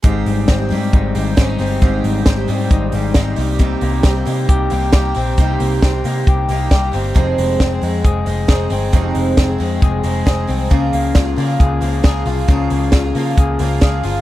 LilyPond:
<<
  \new Staff \with { instrumentName = "Twelve-string acoustic guitar" } { \time 4/4 \key aes \major \tempo 4 = 135 <aes c' ees' g'>4~ <aes c' ees' g'>16 <c' ees' g'>16 <aes c' ees' g'>4 <aes c' ees' g'>8 <aes c' ees' g'>8 <aes c' ees' g'>8 | <aes c' ees' g'>4~ <aes c' ees' g'>16 <c' ees' g'>16 <aes c' ees' g'>4 <aes c' ees' g'>8 <aes c' ees' g'>8 <g bes ees' g'>8 | <c g bes ees' g'>4~ <c g bes ees' g'>16 <bes ees' g'>16 <g bes ees' g'>4 <g bes ees' g'>8 <g bes ees' g'>8 <g bes ees' g'>8 | <c g bes ees' g'>4~ <c g bes ees' g'>16 <bes ees' g'>16 <g bes ees' g'>4 <g bes ees' g'>8 <g bes ees' g'>8 <g bes ees' g'>8 |
<f, c ees aes c' aes'>4~ <f, c ees aes c' aes'>16 <ees aes c' aes'>16 <ees aes c' aes'>4 <ees aes c' aes'>8 <ees aes c' aes'>8 <ees aes c' aes'>8 | <f, c ees aes c' aes'>4~ <f, c ees aes c' aes'>16 <ees aes c' aes'>16 <ees aes c' aes'>4 <ees aes c' aes'>8 <ees aes c' aes'>8 <ees aes c' aes'>8 | <des f bes f' aes'>4~ <des f bes f' aes'>16 <bes f' aes'>16 <f bes f' aes'>4 <f bes f' aes'>8 <f bes f' aes'>8 <f bes f' aes'>8 | <des f bes f' aes'>4~ <des f bes f' aes'>16 <bes f' aes'>16 <f bes f' aes'>4 <f bes f' aes'>8 <f bes f' aes'>8 <f bes f' aes'>8 | }
  \new Staff \with { instrumentName = "Clean electric guitar" } { \time 4/4 \key aes \major aes,8 g8 c'8 g8 ees'8 g8 des'16 ees'16 c'8 | aes,8 g8 c'8 g8 ees'8 g8 ees'8 c8 | c8 bes8 c'8 bes8 g'8 bes8 g'8 c'8 | c8 bes8 c'8 bes8 g'8 bes8 g'8 c'8 |
f,8 aes8 c'8 aes8 aes'8 aes8 aes'8 c'8 | f,8 aes8 c'8 aes8 aes'8 aes8 aes'8 c'8 | des8 bes8 f'8 bes8 aes'8 bes8 aes'8 f'8 | des8 bes8 f'8 bes8 aes'8 bes8 aes'8 f'8 | }
  \new Staff \with { instrumentName = "Picked electric bass" } { \clef bass \time 4/4 \key aes \major aes,,8 aes,,8 aes,,8 aes,8 aes,,8 aes,,8 aes,,8 g,,8 | aes,,8 aes,,8 r8 aes,8 aes,,8 aes,,8 aes,,8 c,8~ | c,8 c,8 c,8 c8 c,8 c,8 c,8 bes,,8 | c,8 c,8 c,8 c8 c,8 c,8 c,8 g,,8 |
f,,8 f,,8 f,,8 f,8 f,,8 f,,8 f,,8 g,,8 | f,,8 f,,8 f,,8 f,8 f,,8 f,,8 f,,8 c,8 | des,8 des,8 des,8 des8 des,8 des,8 des,8 c,8 | des,8 des,8 r8 des8 des,8 des,8 des,8 g,,8 | }
  \new DrumStaff \with { instrumentName = "Drums" } \drummode { \time 4/4 <hh bd>8 hho8 <hh bd sn>8 hho8 <hh bd>8 hho8 <hh bd sn>8 hho8 | <hh bd>8 hho8 <hh bd sn>8 hho8 <hh bd>8 hho8 <hh bd sn>8 hho8 | <hh bd>8 hho8 <hh bd sn>8 hho8 <hh bd>8 hho8 <hh bd sn>8 hho8 | <hh bd>8 hho8 <hh bd sn>8 hho8 <hh bd>8 hho8 <hh bd sn>8 hho8 |
<hh bd>8 hho8 <hh bd sn>8 hho8 <hh bd>8 hho8 <hh bd sn>8 hho8 | <hh bd>8 hho8 <hh bd sn>8 hho8 <hh bd>8 hho8 <hh bd sn>8 hho8 | <hh bd>8 hho8 <hh bd sn>8 hho8 <hh bd>8 hho8 <hh bd sn>8 hho8 | <hh bd>8 hho8 <hh bd sn>8 hho8 <hh bd>8 hho8 <hh bd sn>8 hho8 | }
>>